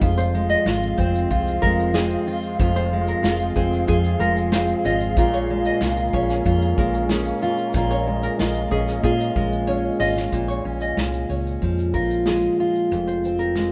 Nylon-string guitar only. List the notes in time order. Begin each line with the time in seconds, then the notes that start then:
0.18 C5
0.50 D#5
0.98 C5
1.62 A#4
1.94 G#4
2.76 C5
3.08 A#4
3.56 G#4
3.88 G#4
4.20 A#4
4.52 C5
4.85 D#5
5.34 C#5
5.66 D#5
6.14 C#5
6.79 A#4
7.11 G#4
7.91 C#5
8.23 A#4
8.71 G#4
9.04 G#4
9.36 A#4
9.67 C#5
10.00 D#5
10.48 C#5
10.81 D#5
11.30 C#5
11.94 A#4
12.27 G#4
13.07 C5
13.39 A#4